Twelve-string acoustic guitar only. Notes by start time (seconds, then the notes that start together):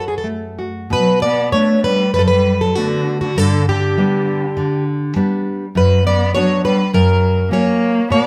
0.08 G#4
0.18 A4
0.93 B4
1.22 D5
1.52 C#5
1.84 B4
2.14 B4
2.19 A4
2.28 B4
2.61 A4
2.76 F#4
3.21 F#4
3.38 A4
3.69 G4
5.77 B4
6.07 D5
6.35 C#5
6.65 B4
6.94 A#4
7.53 C#5
8.12 D5